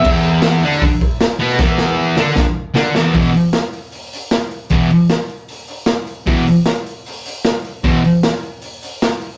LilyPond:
<<
  \new Staff \with { instrumentName = "Distorted electric guitar" } { \clef bass \time 4/4 \key c \lydian \tempo 4 = 153 <e, e>4. <d d'>8 r4. <b, b>8 | <e, e>4. <d d'>8 r4 <d d'>8 <e, e>8 | <e, b, e>8 r2. r8 | <e, b, e>8 r2. r8 |
<e, b, e>8 r2. r8 | <e, b, e>8 r2. r8 | }
  \new DrumStaff \with { instrumentName = "Drums" } \drummode { \time 4/4 <cymc bd>4 <hho sn>8. sn16 <hho bd>8 bd8 <hho sn>8. sn16 | <bd sn>8 sn8 r8 sn8 <bd sn>4 sn8 sn8 | <hho bd>8 hho8 <hho sn>8 hho8 hho8 hho8 <hho sn>8 hho8 | <hho bd>8 hho8 <hho sn>8 hho8 hho8 hho8 <hho sn>8 hho8 |
<hho bd>8 hho8 <hho sn>8 hho8 hho8 hho8 <hho sn>8 hho8 | <hho bd>8 hho8 <hho sn>8 hho8 hho8 hho8 <hho sn>8 hho8 | }
>>